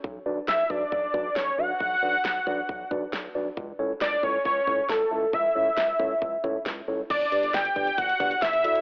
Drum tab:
CC |----------------|----------------|----------------|----------------|
HH |----------------|----------------|----------------|----------------|
SD |----o-------o---|----o-------o---|----o-------o---|----o-------o---|
BD |o-----o-o-o-----|o-----o-o-o-----|o-----o-o-o-----|o-----o-o-o-----|

CC |x---------------|
HH |xxxxxxxxxxxxxxxx|
SD |----o-------o---|
BD |o-----o-o-o-----|